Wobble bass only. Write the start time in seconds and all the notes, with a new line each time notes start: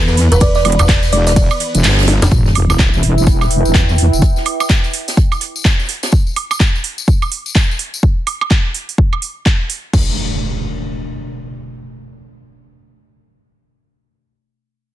Already playing: E2
0.65 E1
1.13 E1
1.75 E1
1.84 G1
2.32 E1
2.55 E1
2.94 E1
3.27 E1
3.65 E1
3.75 E2
4.13 E1